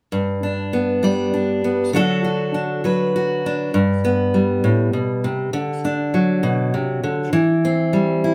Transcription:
0.12 1.93 G2 medium
0.43 1.33 D4 soft
0.73 1.63 B3 soft
1.03 1.90 G3 medium
1.03 1.96 D5 soft
1.34 1.96 D4 soft
1.64 1.90 B3 soft
1.93 3.70 D3 medium
1.93 2.83 F#3 medium
1.93 2.53 D4 medium
1.93 2.23 F#4 medium
1.93 2.85 A4 medium
2.24 3.14 F#4 soft
2.54 3.44 D4 soft
2.84 3.70 F#3 medium
2.84 3.71 B4 medium
3.16 3.71 F#4 soft
3.46 3.71 D4 soft
3.74 4.63 G2 medium
4.05 5.50 B3 soft
4.34 5.50 G3 soft
4.64 4.93 A2 medium
4.93 5.23 B2 soft
5.24 5.53 C3 medium
5.53 6.73 D3 medium
5.85 7.30 D4 soft
6.14 7.30 F#3 soft
6.43 6.73 B2 medium
6.74 7.03 C3 medium
7.03 7.32 D3 medium
7.33 8.35 E3 medium
7.65 8.35 C4 medium
7.93 8.35 G3 medium
8.24 8.35 E4 medium

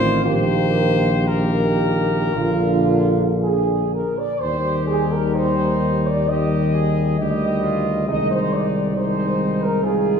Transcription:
0.00 0.25 A1 medium
0.00 0.25 D#3 medium
0.00 0.27 C4 medium
0.00 0.22 F4 medium
0.00 0.24 C5 loud
0.24 2.31 A#1 medium
0.24 1.28 D#3 medium
0.24 1.30 A#3 medium
0.24 1.27 G4 medium
0.24 1.29 C5 loud
1.28 2.33 D#3 medium
1.28 2.33 A#3 medium
1.28 2.32 G4 medium
1.28 3.39 A#4 medium
2.34 4.04 A#1 medium
2.34 4.04 D3 medium
2.34 4.05 A#3 medium
2.34 3.25 F4 medium
3.42 3.89 G#4 medium
3.94 4.18 A#4 medium
4.18 4.42 D5 medium
4.41 7.22 D#2 medium
4.41 6.26 D#3 medium
4.41 6.26 G3 medium
4.41 5.37 G4 medium
4.41 4.88 C5 medium
4.87 5.11 G#4 medium
5.12 5.36 A#4 medium
5.35 6.32 D#4 medium
5.35 6.05 C5 medium
6.07 6.30 D5 medium
6.28 7.18 D#3 medium
6.28 7.18 G3 medium
6.28 6.75 G4 medium
6.28 7.18 D#5 medium
6.74 7.19 G#4 medium
7.19 8.11 D2 medium
7.19 8.07 D#3 medium
7.19 8.10 G3 medium
7.19 7.66 G4 medium
7.19 8.07 D#5 medium
7.64 8.10 F4 medium
8.08 10.20 C2 medium
8.08 8.95 D#3 medium
8.08 8.96 G#3 medium
8.08 8.96 D#4 medium
8.08 8.31 D#5 medium
8.31 8.53 C5 medium
8.52 8.96 D5 medium
8.96 9.83 D#3 medium
8.96 9.82 G#3 medium
8.96 9.85 D#4 medium
8.96 9.61 C5 medium
9.63 9.85 A#4 medium
9.84 10.20 D#3 medium
9.84 10.20 G#3 medium
9.84 10.20 F4 medium
9.84 10.20 G#4 medium

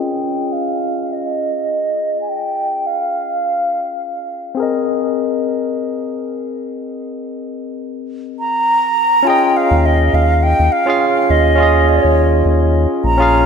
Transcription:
0.00 4.55 C#4 medium
0.00 4.56 F4 medium
0.00 4.56 G#4 medium
0.00 4.59 D#5 medium
0.00 0.54 G5 medium
0.52 1.14 F5 medium
1.12 2.21 D#5 medium
2.21 2.31 G#5 medium
2.29 2.88 G5 medium
2.86 4.31 F5 medium
4.55 9.20 C4 medium
4.55 9.22 G#4 medium
4.60 9.23 A#4 medium
4.60 9.24 D#5 medium
8.39 9.29 A#5 loud
9.23 10.82 C#4 medium
9.23 10.83 F4 medium
9.27 10.85 G#4 medium
9.27 10.86 D#5 medium
9.27 9.58 G5 loud
9.57 9.87 F5 loud
9.71 10.10 D#2 loud
9.86 10.16 D#5 loud
10.13 10.54 D#2 loud
10.13 10.45 F5 loud
10.43 10.74 G5 loud
10.59 10.70 D#2 medium
10.72 11.32 F5 loud
10.86 11.00 C#4 medium
10.86 11.01 F4 medium
10.86 11.01 G#4 medium
10.86 11.02 F5 loud
11.30 12.00 D#2 medium
11.30 11.90 D#5 loud
11.55 13.15 C#4 medium
11.55 13.17 F4 medium
11.60 13.18 G#4 medium
11.60 13.19 D#5 medium
11.88 12.47 C#5 medium
12.04 12.43 D#2 loud
12.45 12.87 D#2 loud
13.04 13.45 A#1 loud
13.04 13.46 A#5 loud
13.18 13.33 C#4 loud
13.18 13.33 F4 medium
13.18 13.34 G#4 medium
13.22 13.35 F5 loud

